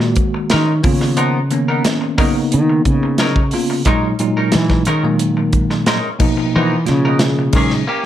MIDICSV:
0, 0, Header, 1, 6, 480
1, 0, Start_track
1, 0, Key_signature, 6, "major"
1, 0, Tempo, 669643
1, 846, Time_signature, 4, 2, 24, 8
1, 5775, End_track
2, 0, Start_track
2, 0, Title_t, "Clean electric guitar"
2, 0, Program_c, 0, 27
2, 366, Note_on_c, 0, 56, 76
2, 366, Note_on_c, 0, 70, 81
2, 368, Note_on_c, 0, 61, 74
2, 368, Note_on_c, 0, 63, 83
2, 512, Note_off_c, 0, 56, 0
2, 512, Note_off_c, 0, 61, 0
2, 512, Note_off_c, 0, 63, 0
2, 512, Note_off_c, 0, 70, 0
2, 838, Note_on_c, 0, 53, 81
2, 839, Note_on_c, 0, 59, 86
2, 842, Note_on_c, 0, 63, 84
2, 844, Note_on_c, 0, 70, 94
2, 988, Note_off_c, 0, 53, 0
2, 988, Note_off_c, 0, 59, 0
2, 990, Note_off_c, 0, 63, 0
2, 991, Note_off_c, 0, 70, 0
2, 1207, Note_on_c, 0, 70, 59
2, 1211, Note_on_c, 0, 63, 49
2, 1215, Note_on_c, 0, 59, 49
2, 1313, Note_off_c, 0, 59, 0
2, 1314, Note_off_c, 0, 63, 0
2, 1317, Note_off_c, 0, 70, 0
2, 1562, Note_on_c, 0, 54, 96
2, 1562, Note_on_c, 0, 63, 96
2, 1563, Note_on_c, 0, 61, 87
2, 1565, Note_on_c, 0, 70, 98
2, 1683, Note_off_c, 0, 70, 0
2, 1685, Note_off_c, 0, 61, 0
2, 1686, Note_off_c, 0, 54, 0
2, 1686, Note_off_c, 0, 63, 0
2, 2289, Note_on_c, 0, 61, 85
2, 2292, Note_on_c, 0, 54, 81
2, 2294, Note_on_c, 0, 70, 88
2, 2295, Note_on_c, 0, 63, 84
2, 2433, Note_off_c, 0, 61, 0
2, 2435, Note_off_c, 0, 54, 0
2, 2436, Note_off_c, 0, 63, 0
2, 2436, Note_off_c, 0, 70, 0
2, 2770, Note_on_c, 0, 56, 90
2, 2772, Note_on_c, 0, 61, 94
2, 2774, Note_on_c, 0, 63, 105
2, 2777, Note_on_c, 0, 70, 98
2, 2914, Note_off_c, 0, 56, 0
2, 2915, Note_off_c, 0, 61, 0
2, 2916, Note_off_c, 0, 63, 0
2, 2917, Note_off_c, 0, 70, 0
2, 3132, Note_on_c, 0, 70, 54
2, 3137, Note_on_c, 0, 63, 46
2, 3140, Note_on_c, 0, 61, 42
2, 3242, Note_off_c, 0, 61, 0
2, 3243, Note_off_c, 0, 63, 0
2, 3244, Note_off_c, 0, 70, 0
2, 3489, Note_on_c, 0, 61, 90
2, 3490, Note_on_c, 0, 63, 75
2, 3491, Note_on_c, 0, 56, 81
2, 3496, Note_on_c, 0, 70, 98
2, 3607, Note_off_c, 0, 70, 0
2, 3610, Note_off_c, 0, 61, 0
2, 3610, Note_off_c, 0, 63, 0
2, 3611, Note_off_c, 0, 56, 0
2, 4204, Note_on_c, 0, 56, 88
2, 4210, Note_on_c, 0, 61, 90
2, 4211, Note_on_c, 0, 63, 103
2, 4212, Note_on_c, 0, 70, 97
2, 4351, Note_off_c, 0, 56, 0
2, 4354, Note_off_c, 0, 61, 0
2, 4355, Note_off_c, 0, 63, 0
2, 4355, Note_off_c, 0, 70, 0
2, 4699, Note_on_c, 0, 53, 77
2, 4700, Note_on_c, 0, 63, 90
2, 4702, Note_on_c, 0, 59, 80
2, 4703, Note_on_c, 0, 70, 95
2, 4839, Note_off_c, 0, 53, 0
2, 4839, Note_off_c, 0, 63, 0
2, 4840, Note_off_c, 0, 59, 0
2, 4840, Note_off_c, 0, 70, 0
2, 5054, Note_on_c, 0, 70, 53
2, 5058, Note_on_c, 0, 63, 51
2, 5062, Note_on_c, 0, 59, 43
2, 5167, Note_off_c, 0, 63, 0
2, 5168, Note_off_c, 0, 59, 0
2, 5169, Note_off_c, 0, 70, 0
2, 5414, Note_on_c, 0, 51, 75
2, 5420, Note_on_c, 0, 58, 78
2, 5422, Note_on_c, 0, 61, 78
2, 5425, Note_on_c, 0, 68, 83
2, 5531, Note_off_c, 0, 68, 0
2, 5533, Note_off_c, 0, 51, 0
2, 5534, Note_off_c, 0, 58, 0
2, 5534, Note_off_c, 0, 61, 0
2, 5644, Note_on_c, 0, 58, 80
2, 5651, Note_on_c, 0, 61, 81
2, 5653, Note_on_c, 0, 67, 88
2, 5762, Note_off_c, 0, 67, 0
2, 5766, Note_off_c, 0, 61, 0
2, 5768, Note_off_c, 0, 58, 0
2, 5775, End_track
3, 0, Start_track
3, 0, Title_t, "Tine electric piano"
3, 0, Program_c, 1, 4
3, 0, Note_on_c, 1, 51, 78
3, 0, Note_on_c, 1, 56, 72
3, 0, Note_on_c, 1, 58, 73
3, 0, Note_on_c, 1, 66, 81
3, 444, Note_off_c, 1, 51, 0
3, 446, Note_off_c, 1, 56, 0
3, 448, Note_off_c, 1, 58, 0
3, 450, Note_off_c, 1, 66, 0
3, 594, Note_on_c, 1, 51, 70
3, 596, Note_on_c, 1, 58, 66
3, 597, Note_on_c, 1, 59, 67
3, 605, Note_on_c, 1, 65, 80
3, 992, Note_off_c, 1, 51, 0
3, 993, Note_off_c, 1, 58, 0
3, 993, Note_off_c, 1, 59, 0
3, 997, Note_off_c, 1, 65, 0
3, 1081, Note_on_c, 1, 51, 73
3, 1089, Note_on_c, 1, 58, 73
3, 1090, Note_on_c, 1, 59, 64
3, 1098, Note_on_c, 1, 61, 82
3, 1564, Note_off_c, 1, 51, 0
3, 1565, Note_off_c, 1, 58, 0
3, 1568, Note_off_c, 1, 59, 0
3, 1569, Note_on_c, 1, 49, 92
3, 1572, Note_off_c, 1, 61, 0
3, 1574, Note_on_c, 1, 58, 81
3, 1576, Note_on_c, 1, 59, 88
3, 1579, Note_on_c, 1, 63, 99
3, 2349, Note_off_c, 1, 49, 0
3, 2351, Note_off_c, 1, 58, 0
3, 2352, Note_off_c, 1, 59, 0
3, 2354, Note_off_c, 1, 63, 0
3, 2531, Note_on_c, 1, 49, 74
3, 2534, Note_on_c, 1, 58, 64
3, 2536, Note_on_c, 1, 59, 61
3, 2541, Note_on_c, 1, 65, 84
3, 2725, Note_off_c, 1, 49, 0
3, 2726, Note_off_c, 1, 58, 0
3, 2727, Note_off_c, 1, 59, 0
3, 2730, Note_off_c, 1, 65, 0
3, 2762, Note_on_c, 1, 46, 92
3, 2767, Note_on_c, 1, 54, 83
3, 2770, Note_on_c, 1, 63, 107
3, 2771, Note_on_c, 1, 56, 81
3, 2960, Note_off_c, 1, 46, 0
3, 2963, Note_off_c, 1, 54, 0
3, 2964, Note_off_c, 1, 56, 0
3, 2964, Note_off_c, 1, 63, 0
3, 3005, Note_on_c, 1, 46, 88
3, 3006, Note_on_c, 1, 54, 83
3, 3008, Note_on_c, 1, 56, 78
3, 3012, Note_on_c, 1, 63, 93
3, 3494, Note_off_c, 1, 46, 0
3, 3494, Note_off_c, 1, 54, 0
3, 3495, Note_off_c, 1, 56, 0
3, 3497, Note_off_c, 1, 63, 0
3, 3611, Note_on_c, 1, 46, 82
3, 3613, Note_on_c, 1, 54, 74
3, 3615, Note_on_c, 1, 58, 90
3, 3617, Note_on_c, 1, 56, 74
3, 4292, Note_off_c, 1, 46, 0
3, 4293, Note_off_c, 1, 54, 0
3, 4294, Note_off_c, 1, 58, 0
3, 4295, Note_off_c, 1, 56, 0
3, 4437, Note_on_c, 1, 47, 91
3, 4443, Note_on_c, 1, 53, 79
3, 4443, Note_on_c, 1, 58, 78
3, 4446, Note_on_c, 1, 63, 104
3, 4834, Note_off_c, 1, 47, 0
3, 4837, Note_off_c, 1, 53, 0
3, 4837, Note_off_c, 1, 58, 0
3, 4838, Note_off_c, 1, 63, 0
3, 4909, Note_on_c, 1, 47, 71
3, 4916, Note_on_c, 1, 53, 59
3, 4918, Note_on_c, 1, 58, 67
3, 4921, Note_on_c, 1, 65, 83
3, 5392, Note_on_c, 1, 46, 75
3, 5396, Note_on_c, 1, 54, 69
3, 5397, Note_on_c, 1, 56, 73
3, 5398, Note_off_c, 1, 47, 0
3, 5402, Note_off_c, 1, 53, 0
3, 5402, Note_on_c, 1, 63, 86
3, 5403, Note_off_c, 1, 58, 0
3, 5404, Note_off_c, 1, 65, 0
3, 5596, Note_off_c, 1, 46, 0
3, 5598, Note_off_c, 1, 54, 0
3, 5598, Note_off_c, 1, 56, 0
3, 5600, Note_off_c, 1, 63, 0
3, 5775, End_track
4, 0, Start_track
4, 0, Title_t, "Fretless electric bass"
4, 0, Program_c, 2, 35
4, 0, Note_on_c, 2, 46, 76
4, 100, Note_off_c, 2, 46, 0
4, 381, Note_on_c, 2, 51, 80
4, 606, Note_off_c, 2, 51, 0
4, 609, Note_on_c, 2, 49, 72
4, 1299, Note_off_c, 2, 49, 0
4, 1819, Note_on_c, 2, 51, 91
4, 2046, Note_off_c, 2, 51, 0
4, 2051, Note_on_c, 2, 49, 78
4, 2740, Note_off_c, 2, 49, 0
4, 3259, Note_on_c, 2, 52, 103
4, 3486, Note_off_c, 2, 52, 0
4, 3490, Note_on_c, 2, 51, 77
4, 4179, Note_off_c, 2, 51, 0
4, 4700, Note_on_c, 2, 52, 95
4, 4926, Note_off_c, 2, 52, 0
4, 4936, Note_on_c, 2, 49, 86
4, 5623, Note_off_c, 2, 49, 0
4, 5775, End_track
5, 0, Start_track
5, 0, Title_t, "Muted clean electric guitar strokes"
5, 1, Note_on_c, 9, 29, 38
5, 73, Note_off_c, 9, 29, 0
5, 246, Note_on_c, 9, 29, 39
5, 317, Note_off_c, 9, 29, 0
5, 605, Note_on_c, 9, 29, 42
5, 677, Note_off_c, 9, 29, 0
5, 726, Note_on_c, 9, 29, 45
5, 798, Note_off_c, 9, 29, 0
5, 1084, Note_on_c, 9, 29, 39
5, 1155, Note_off_c, 9, 29, 0
5, 1321, Note_on_c, 9, 29, 49
5, 1393, Note_off_c, 9, 29, 0
5, 1440, Note_on_c, 9, 29, 50
5, 1512, Note_off_c, 9, 29, 0
5, 1692, Note_on_c, 9, 29, 41
5, 1763, Note_off_c, 9, 29, 0
5, 1932, Note_on_c, 9, 29, 35
5, 2004, Note_off_c, 9, 29, 0
5, 2172, Note_on_c, 9, 29, 42
5, 2244, Note_off_c, 9, 29, 0
5, 2533, Note_on_c, 9, 29, 44
5, 2605, Note_off_c, 9, 29, 0
5, 2652, Note_on_c, 9, 29, 51
5, 2723, Note_off_c, 9, 29, 0
5, 3017, Note_on_c, 9, 29, 44
5, 3089, Note_off_c, 9, 29, 0
5, 3251, Note_on_c, 9, 29, 44
5, 3323, Note_off_c, 9, 29, 0
5, 3375, Note_on_c, 9, 29, 48
5, 3447, Note_off_c, 9, 29, 0
5, 3616, Note_on_c, 9, 29, 43
5, 3687, Note_off_c, 9, 29, 0
5, 3848, Note_on_c, 9, 29, 36
5, 3920, Note_off_c, 9, 29, 0
5, 4089, Note_on_c, 9, 29, 48
5, 4161, Note_off_c, 9, 29, 0
5, 4453, Note_on_c, 9, 29, 42
5, 4525, Note_off_c, 9, 29, 0
5, 4569, Note_on_c, 9, 29, 42
5, 4640, Note_off_c, 9, 29, 0
5, 4938, Note_on_c, 9, 29, 41
5, 5009, Note_off_c, 9, 29, 0
5, 5175, Note_on_c, 9, 29, 42
5, 5247, Note_off_c, 9, 29, 0
5, 5295, Note_on_c, 9, 29, 38
5, 5367, Note_off_c, 9, 29, 0
5, 5540, Note_on_c, 9, 29, 52
5, 5612, Note_off_c, 9, 29, 0
5, 5775, End_track
6, 0, Start_track
6, 0, Title_t, "Drums"
6, 2, Note_on_c, 9, 38, 35
6, 74, Note_off_c, 9, 38, 0
6, 112, Note_on_c, 9, 42, 61
6, 119, Note_on_c, 9, 36, 82
6, 183, Note_off_c, 9, 42, 0
6, 190, Note_off_c, 9, 36, 0
6, 356, Note_on_c, 9, 42, 79
6, 358, Note_on_c, 9, 38, 103
6, 428, Note_off_c, 9, 42, 0
6, 430, Note_off_c, 9, 38, 0
6, 599, Note_on_c, 9, 46, 78
6, 602, Note_on_c, 9, 36, 104
6, 670, Note_off_c, 9, 46, 0
6, 674, Note_off_c, 9, 36, 0
6, 724, Note_on_c, 9, 38, 35
6, 796, Note_off_c, 9, 38, 0
6, 837, Note_on_c, 9, 42, 77
6, 909, Note_off_c, 9, 42, 0
6, 1079, Note_on_c, 9, 42, 59
6, 1151, Note_off_c, 9, 42, 0
6, 1322, Note_on_c, 9, 42, 82
6, 1324, Note_on_c, 9, 38, 103
6, 1394, Note_off_c, 9, 42, 0
6, 1396, Note_off_c, 9, 38, 0
6, 1562, Note_on_c, 9, 46, 66
6, 1564, Note_on_c, 9, 36, 112
6, 1634, Note_off_c, 9, 46, 0
6, 1636, Note_off_c, 9, 36, 0
6, 1805, Note_on_c, 9, 42, 88
6, 1877, Note_off_c, 9, 42, 0
6, 2045, Note_on_c, 9, 42, 63
6, 2046, Note_on_c, 9, 36, 77
6, 2117, Note_off_c, 9, 42, 0
6, 2118, Note_off_c, 9, 36, 0
6, 2280, Note_on_c, 9, 42, 80
6, 2282, Note_on_c, 9, 38, 98
6, 2352, Note_off_c, 9, 42, 0
6, 2354, Note_off_c, 9, 38, 0
6, 2407, Note_on_c, 9, 36, 82
6, 2479, Note_off_c, 9, 36, 0
6, 2517, Note_on_c, 9, 46, 70
6, 2588, Note_off_c, 9, 46, 0
6, 2760, Note_on_c, 9, 42, 78
6, 2766, Note_on_c, 9, 36, 100
6, 2832, Note_off_c, 9, 42, 0
6, 2837, Note_off_c, 9, 36, 0
6, 3003, Note_on_c, 9, 42, 67
6, 3075, Note_off_c, 9, 42, 0
6, 3238, Note_on_c, 9, 42, 92
6, 3240, Note_on_c, 9, 38, 107
6, 3310, Note_off_c, 9, 42, 0
6, 3312, Note_off_c, 9, 38, 0
6, 3365, Note_on_c, 9, 38, 36
6, 3366, Note_on_c, 9, 36, 80
6, 3436, Note_off_c, 9, 38, 0
6, 3438, Note_off_c, 9, 36, 0
6, 3479, Note_on_c, 9, 42, 65
6, 3550, Note_off_c, 9, 42, 0
6, 3723, Note_on_c, 9, 42, 91
6, 3794, Note_off_c, 9, 42, 0
6, 3961, Note_on_c, 9, 42, 61
6, 3964, Note_on_c, 9, 36, 79
6, 4033, Note_off_c, 9, 42, 0
6, 4036, Note_off_c, 9, 36, 0
6, 4087, Note_on_c, 9, 38, 35
6, 4159, Note_off_c, 9, 38, 0
6, 4203, Note_on_c, 9, 42, 76
6, 4205, Note_on_c, 9, 38, 100
6, 4274, Note_off_c, 9, 42, 0
6, 4277, Note_off_c, 9, 38, 0
6, 4442, Note_on_c, 9, 49, 79
6, 4444, Note_on_c, 9, 36, 102
6, 4513, Note_off_c, 9, 49, 0
6, 4516, Note_off_c, 9, 36, 0
6, 4921, Note_on_c, 9, 42, 59
6, 4923, Note_on_c, 9, 38, 38
6, 4992, Note_off_c, 9, 42, 0
6, 4994, Note_off_c, 9, 38, 0
6, 5156, Note_on_c, 9, 42, 73
6, 5158, Note_on_c, 9, 38, 115
6, 5227, Note_off_c, 9, 42, 0
6, 5229, Note_off_c, 9, 38, 0
6, 5394, Note_on_c, 9, 49, 85
6, 5399, Note_on_c, 9, 36, 102
6, 5466, Note_off_c, 9, 49, 0
6, 5471, Note_off_c, 9, 36, 0
6, 5520, Note_on_c, 9, 38, 35
6, 5592, Note_off_c, 9, 38, 0
6, 5775, End_track
0, 0, End_of_file